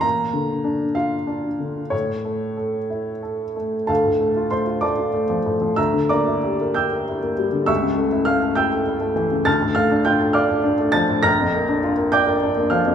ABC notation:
X:1
M:6/8
L:1/16
Q:3/8=65
K:Dm
V:1 name="Upright piano"
b6 f6 | ^c8- c2 z2 | [Afa]4 [cc']2 [dad']6 | [ebe']2 [dbd']4 [ge'g']6 |
[e^c'e']4 [ff']2 [ge'g']6 | [af'a']2 [ff']2 [gg']2 [fd'f']4 [aa']2 | [bf'b']6 [gd'g']4 [ff']2 |]
V:2 name="Upright piano"
B,,2 D,2 D2 F2 D2 D,2 | A,,2 A,2 A2 E2 A2 A,2 | D,, A,, A, F A, F A, F A, F, A,, F, | D,, D, B, E G B G B E B, G, D, |
^C,, ^C, A, E A, A E A E A, E, C, | D,, A,, A, D F A d A D A, F, A,, | B,,, F,, B, D F B d B D B, F, F,, |]